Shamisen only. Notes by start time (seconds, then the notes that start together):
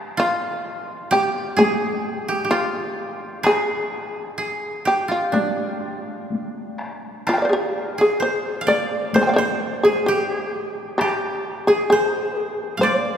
0.20 F4
1.12 G4
1.59 G#4
2.51 F4
3.46 G#4
4.87 G4
5.11 F4
5.34 D4
7.29 F4
7.33 G5
7.38 D5 F5
7.45 C5
7.49 G4 G#4
8.01 G#4
8.22 C5
8.68 D5
9.16 C5
9.21 G#5 C6
9.27 F5 G5
9.34 C5 D5
9.83 G#4
10.06 G4
10.98 G4
11.67 G#4
11.90 G#4
12.19 C5
12.81 C5
13.00 D5